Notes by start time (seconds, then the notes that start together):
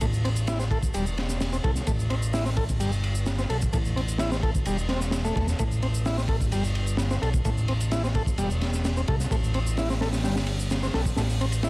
0.01 A1 A3, kick, ride, shaker
0.13 shaker
0.24 C4, ride
0.36 ride, shaker
0.47 E4, snare, ride, shaker
0.59 C4, snare, shaker
0.71 A4, kick, ride
0.83 kick, shaker
0.94 E1 G3, ride, shaker
1.06 shaker
1.18 snare, ride
1.29 snare, shaker
1.41 snare, ride, shaker
1.53 C4, shaker
1.64 C2 A4, kick, ride
1.76 snare, shaker
1.87 A1 A3, kick, ride, shaker
1.99 shaker
2.10 C4, ride
2.23 shaker
2.33 E4, snare, open hi-hat, shaker
2.45 C4, snare, shaker
2.57 A4, kick, ride
2.69 kick, shaker
2.80 G1 G3, ride, shaker
2.92 shaker
3.04 ride
3.15 shaker
3.26 snare, ride, shaker
3.39 C4, snare, shaker
3.50 B1 A4, ride
3.62 kick, shaker
3.73 A1 A3, kick, ride, shaker
3.85 shaker
3.96 C4, ride
4.08 ride, shaker
4.18 E4, snare, ride, shaker
4.32 C4, snare, shaker
4.43 A4, kick, ride
4.55 kick, shaker
4.66 E1 G3, ride, shaker
4.78 shaker
4.89 C4, snare, ride
5.00 snare, shaker
5.11 snare, ride, shaker
5.25 A3, shaker
5.36 E1 A3, kick, ride
5.48 snare, shaker
5.59 A1 A3, kick, ride, shaker
5.71 shaker
5.82 C4, ride
5.95 shaker
6.06 E4, snare, open hi-hat, shaker
6.18 C4, snare, shaker
6.28 A4, kick, ride
6.41 kick, shaker
6.52 G1 G3, ride, shaker
6.64 shaker
6.75 ride
6.87 shaker
6.97 snare, ride, shaker
7.11 C4, snare, shaker
7.22 B1 A4, ride
7.34 kick, shaker
7.45 A1 A3, kick, ride, shaker
7.57 shaker
7.68 C4, ride
7.80 ride, shaker
7.91 E4, snare, ride, shaker
8.04 C4, snare, shaker
8.15 A4, kick, ride
8.26 kick, shaker
8.38 E1 G3, ride, shaker
8.51 shaker
8.61 snare, ride
8.74 snare, shaker
8.85 snare, ride, shaker
8.97 C4, shaker
9.08 C2 A4, kick, ride
9.20 snare, shaker
9.31 A1 A3, kick, ride, shaker
9.44 shaker
9.54 C4, ride
9.67 shaker
9.77 E4, snare, open hi-hat, shaker
9.90 C4, snare, shaker
10.01 A4, snare, open hi-hat
10.13 snare, open hi-hat, shaker
10.24 G1 G3, snare, open hi-hat, shaker
10.36 snare, open hi-hat, shaker
10.47 ride
10.60 shaker
10.71 snare, ride, shaker
10.83 C4, snare, shaker
10.94 B1 A4, snare, open hi-hat
11.05 kick, shaker
11.16 A1 A3, snare, open hi-hat, shaker
11.30 shaker
11.41 C4, ride
11.52 ride, shaker
11.63 E4, snare, ride, shaker